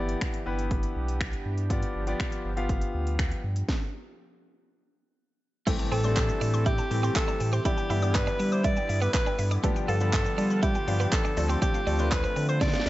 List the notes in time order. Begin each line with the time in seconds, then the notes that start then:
Already playing: G1 E3 B3 D4 E4 G4 D5
0.09 closed hi-hat
0.21 finger snap, kick, closed hi-hat
0.34 closed hi-hat
0.46 G1 B3 E4 G4 B4
0.59 closed hi-hat
0.71 kick, closed hi-hat
0.83 closed hi-hat
0.96 B1
1.08 closed hi-hat
1.21 finger snap, kick, closed hi-hat
1.33 closed hi-hat
1.45 G2
1.58 closed hi-hat
1.70 F3 B3 F4 G4 D5, kick, closed hi-hat
1.83 closed hi-hat
1.95 G1
2.07 B3 F4 G4 D5, closed hi-hat
2.20 finger snap, kick, closed hi-hat
2.32 closed hi-hat
2.45 G1
2.57 B3 F4 G4 F5, closed hi-hat
2.69 kick, closed hi-hat
2.81 closed hi-hat
2.94 D2
3.07 closed hi-hat
3.19 finger snap, kick, closed hi-hat
3.31 closed hi-hat
3.44 G2
3.56 closed hi-hat
3.69 kick, snare
5.67 E3 G3 A3 C4 G4 C5, kick, closed hi-hat, crash, impact, shaker
5.79 A5, muted clean electric guitar stroke, shaker
5.92 A2 C4 A4 G5, open hi-hat, shaker
6.04 E3 G3 A3 C4 D4 C6, shaker
6.17 C5, kick, clap, closed hi-hat, shaker
6.29 shaker
6.41 A2 D4, open hi-hat, shaker
6.54 C6, shaker
6.66 E4 G4, kick, closed hi-hat, shaker
6.78 A5, muted clean electric guitar stroke, shaker
6.91 A2 E3 G3 A3 C4 G4 G5, open hi-hat, shaker
7.03 C4 C6, shaker
7.16 A4, kick, clap, closed hi-hat, shaker
7.28 D4 A5, shaker
7.40 A2 G5, muted clean electric guitar stroke, open hi-hat, shaker
7.53 C4 G4 C6, shaker
7.65 D3 E3 G3 B3 D4 E4 G4 D5, kick, closed hi-hat, shaker
7.78 G5, muted clean electric guitar stroke, shaker
7.90 G2 E3 G3 B3 D4 E4 G4 E5, open hi-hat, shaker
8.02 E3 G3 B3 D4 G4 D6, shaker
8.15 B4 D5, muted clean electric guitar stroke, kick, clap, closed hi-hat, shaker
8.27 D4, shaker
8.40 G3 D4, open hi-hat, shaker
8.52 C5 D6, shaker
8.64 E4 D5, kick, closed hi-hat, shaker
8.76 G5, shaker
8.89 G2 E5, muted clean electric guitar stroke, open hi-hat, shaker
9.02 B3 B4 D6, shaker
9.14 B4, kick, clap, closed hi-hat, shaker
9.26 D4 G5, shaker
9.39 G2 E5, muted clean electric guitar stroke, open hi-hat, shaker
9.51 D4 D6, shaker
9.63 F3 G3 A3 B3 D4 F4 G4 B4, kick, closed hi-hat, shaker
9.76 G5, muted clean electric guitar stroke, shaker
9.88 G2 B3 A4 F5, open hi-hat, shaker
10.00 F3 G3 B3 D4 G4 B5, shaker
10.13 B4, kick, clap, closed hi-hat, shaker
10.26 shaker
10.38 G3 D4, open hi-hat, shaker
10.50 B5, shaker
10.63 E4 G4, kick, closed hi-hat, shaker
10.75 G5, muted clean electric guitar stroke, shaker
10.87 G2 F3 G3 B3 D4 G4 F5, open hi-hat, shaker
11.00 B3 B5, shaker
11.12 A4, kick, clap, closed hi-hat, shaker
11.25 D4 G5, shaker
11.37 D2 D3 F3 A3 C4 D4 F4 A4 D5, muted clean electric guitar stroke, open hi-hat, shaker
11.49 C4 G4 C6, shaker
11.62 D4 G4 C5, kick, closed hi-hat, shaker
11.74 F5, muted clean electric guitar stroke, shaker
11.87 D2 F3 A3 C4 D4 A4 D5, open hi-hat, shaker
11.99 F3 A3 C4 D4 B4 C6, shaker
12.11 B4 C5, muted clean electric guitar stroke, kick, clap, closed hi-hat, shaker
12.24 C4, shaker
12.36 D3 C4, open hi-hat, shaker
12.49 C5 C6, shaker
12.61 D4 D5, kick, snare, closed hi-hat, shaker
12.67 snare
12.73 F5, snare, shaker
12.80 snare
12.86 D2 D5, muted clean electric guitar stroke, snare, open hi-hat, shaker